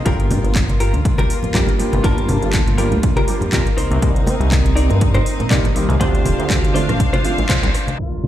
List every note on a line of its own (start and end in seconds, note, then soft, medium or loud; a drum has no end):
0.05 0.32 G1 medium
0.05 3.74 G3 medium
0.05 5.97 A#3 medium
0.05 0.44 F4 loud
0.05 3.74 F4 medium
0.05 0.44 G4 loud
0.05 0.44 A#4 loud
0.05 kick loud
0.05 closed hi-hat medium
0.20 closed hi-hat soft
0.30 0.39 G2 loud
0.30 open hi-hat loud
0.30 muted conga medium
0.30 high conga medium
0.44 0.95 G1 medium
0.44 closed hi-hat soft
0.55 kick loud
0.55 clap loud
0.55 closed hi-hat medium
0.69 closed hi-hat soft
0.69 muted conga soft
0.69 high conga medium
0.80 0.94 F4 medium
0.80 0.94 G4 medium
0.80 0.94 A#4 medium
0.80 open hi-hat loud
0.94 1.23 D2 medium
0.94 closed hi-hat soft
0.94 low conga medium
1.05 muted clean electric guitar stroke soft
1.05 kick loud
1.05 closed hi-hat medium
1.18 1.36 F4 medium
1.18 1.37 G4 loud
1.18 1.37 A#4 loud
1.18 closed hi-hat soft
1.18 muted conga medium
1.18 high conga medium
1.30 open hi-hat loud
1.43 1.52 F2 soft
1.43 closed hi-hat soft
1.43 low conga medium
1.53 1.63 F2 medium
1.53 1.65 F3 medium
1.53 1.66 G3 medium
1.53 1.66 A#3 medium
1.53 1.66 D4 medium
1.53 1.68 F4 medium
1.53 1.66 G4 medium
1.53 1.68 G4 medium
1.53 1.68 A#4 medium
1.53 kick loud
1.53 clap loud
1.53 closed hi-hat medium
1.53 high conga medium
1.67 closed hi-hat soft
1.67 low conga medium
1.78 1.90 G1 soft
1.78 1.96 F3 medium
1.78 1.96 G3 medium
1.78 1.96 A#3 medium
1.78 1.96 D4 medium
1.78 1.96 G4 medium
1.78 muted clean electric guitar stroke soft
1.78 open hi-hat loud
1.93 2.00 G1 loud
1.93 muted clean electric guitar stroke soft
1.93 closed hi-hat soft
1.93 high conga medium
2.03 2.30 G1 medium
2.03 2.75 F3 medium
2.03 2.76 G3 medium
2.03 2.76 A#3 medium
2.03 2.76 D4 medium
2.03 2.43 F4 loud
2.03 2.43 G4 medium
2.03 2.43 A#4 loud
2.03 2.76 A5 loud
2.03 kick loud
2.03 closed hi-hat medium
2.18 closed hi-hat soft
2.28 2.37 G2 loud
2.28 open hi-hat loud
2.28 muted conga medium
2.28 high conga medium
2.42 2.93 G1 medium
2.42 closed hi-hat soft
2.53 kick loud
2.53 clap loud
2.53 closed hi-hat medium
2.67 closed hi-hat soft
2.67 high conga medium
2.78 2.89 F3 medium
2.78 2.89 G3 medium
2.78 2.89 A#3 medium
2.78 2.90 D4 medium
2.78 2.92 F4 medium
2.78 2.92 G4 medium
2.78 2.90 G4 medium
2.78 2.92 A#4 medium
2.78 open hi-hat loud
2.92 3.21 D2 medium
2.92 closed hi-hat soft
2.92 low conga medium
3.03 muted clean electric guitar stroke soft
3.03 kick loud
3.03 closed hi-hat medium
3.16 3.35 F4 loud
3.16 3.35 G4 loud
3.16 3.35 A#4 loud
3.16 closed hi-hat soft
3.16 high conga medium
3.27 3.39 F3 medium
3.27 3.39 G3 medium
3.27 3.39 A#3 medium
3.27 3.39 D4 medium
3.27 3.40 G4 medium
3.27 open hi-hat loud
3.41 3.50 F2 soft
3.41 closed hi-hat soft
3.41 low conga medium
3.52 3.62 F2 medium
3.52 3.66 F4 medium
3.52 3.67 G4 medium
3.52 3.67 A#4 medium
3.52 kick loud
3.52 clap loud
3.52 closed hi-hat medium
3.52 high conga medium
3.65 closed hi-hat soft
3.65 low conga medium
3.77 3.88 C2 soft
3.77 5.98 C4 medium
3.77 4.57 D#4 medium
3.77 5.98 D#4 medium
3.77 4.57 A#4 medium
3.77 4.57 C5 loud
3.77 cross-stick medium
3.77 open hi-hat loud
3.91 3.98 C2 loud
3.91 closed hi-hat soft
3.91 high conga medium
4.02 4.28 C2 loud
4.02 kick loud
4.02 closed hi-hat medium
4.16 closed hi-hat soft
4.26 4.35 C3 loud
4.26 open hi-hat medium
4.26 muted conga medium
4.26 high conga medium
4.40 4.92 C2 medium
4.40 closed hi-hat soft
4.52 kick loud
4.52 clap loud
4.52 closed hi-hat medium
4.65 closed hi-hat soft
4.65 muted conga soft
4.65 high conga medium
4.75 4.90 D#4 medium
4.75 4.90 A#4 medium
4.75 4.90 D5 medium
4.75 open hi-hat loud
4.90 5.20 G2 medium
4.90 closed hi-hat soft
4.90 low conga medium
5.01 muted clean electric guitar stroke soft
5.01 kick loud
5.01 closed hi-hat medium
5.14 5.33 D#4 loud
5.14 5.33 A#4 medium
5.14 5.33 C5 loud
5.14 closed hi-hat soft
5.14 muted conga medium
5.14 high conga medium
5.26 open hi-hat loud
5.39 5.49 A#2 soft
5.39 closed hi-hat soft
5.39 low conga medium
5.50 5.60 A#2 medium
5.50 5.62 D#3 medium
5.50 5.62 G3 medium
5.50 5.62 A#3 medium
5.50 5.62 C4 medium
5.50 5.64 D#4 medium
5.50 5.62 G4 medium
5.50 5.65 A#4 medium
5.50 5.65 D5 medium
5.50 kick loud
5.50 clap loud
5.50 closed hi-hat medium
5.50 high conga medium
5.64 closed hi-hat soft
5.64 low conga medium
5.75 5.87 C2 soft
5.75 5.93 D#3 medium
5.75 5.93 G3 medium
5.75 5.93 A#3 medium
5.75 5.93 C4 medium
5.75 5.93 G4 medium
5.75 muted clean electric guitar stroke soft
5.75 open hi-hat medium
5.89 5.96 C2 loud
5.89 muted clean electric guitar stroke soft
5.89 closed hi-hat soft
5.89 high conga medium
5.99 6.26 D2 medium
5.99 6.72 D3 medium
5.99 6.72 F3 medium
5.99 6.72 A3 medium
5.99 6.72 C4 medium
5.99 6.39 D4 loud
5.99 7.97 D4 medium
5.99 6.39 F4 medium
5.99 6.73 G4 medium
5.99 7.97 C5 medium
5.99 6.39 C5 loud
5.99 7.97 F5 medium
5.99 kick loud
5.99 closed hi-hat medium
6.15 closed hi-hat soft
6.25 6.34 D1 loud
6.25 open hi-hat loud
6.25 muted conga medium
6.25 high conga medium
6.39 6.90 D2 medium
6.39 closed hi-hat soft
6.50 kick loud
6.50 clap loud
6.50 closed hi-hat medium
6.64 closed hi-hat soft
6.64 muted conga soft
6.64 high conga medium
6.74 6.86 D3 medium
6.74 6.86 F3 medium
6.74 6.86 A3 medium
6.74 6.86 C4 medium
6.74 6.88 D4 medium
6.74 6.89 F4 medium
6.74 6.87 F4 medium
6.74 6.89 C5 medium
6.74 open hi-hat loud
6.89 7.18 A1 medium
6.89 cross-stick medium
6.89 closed hi-hat soft
6.89 low conga medium
6.99 muted clean electric guitar stroke soft
6.99 kick loud
6.99 closed hi-hat medium
7.13 7.31 D4 loud
7.13 7.31 F4 medium
7.13 7.31 C5 loud
7.13 closed hi-hat soft
7.13 high conga medium
7.24 7.36 D3 medium
7.24 7.36 F3 medium
7.24 7.36 A3 medium
7.24 7.36 C4 medium
7.24 7.36 F4 medium
7.24 open hi-hat loud
7.38 7.45 A1 medium
7.38 closed hi-hat soft
7.38 low conga medium
7.49 7.63 D4 medium
7.49 7.63 F4 medium
7.49 7.63 C5 medium
7.49 kick loud
7.49 clap loud
7.49 closed hi-hat loud
7.49 high conga medium
7.63 7.70 C2 loud
7.63 closed hi-hat soft
7.63 low conga medium
7.74 muted clean electric guitar stroke soft
7.74 cross-stick medium
7.74 open hi-hat loud
7.88 muted clean electric guitar stroke soft
7.88 closed hi-hat soft
7.88 high conga medium
7.99 8.28 G3 medium
7.99 8.28 F4 medium
7.99 8.28 A#4 medium
7.99 tambourine soft
7.99 impact medium
8.23 tambourine medium
8.23 muted conga medium
8.23 high conga medium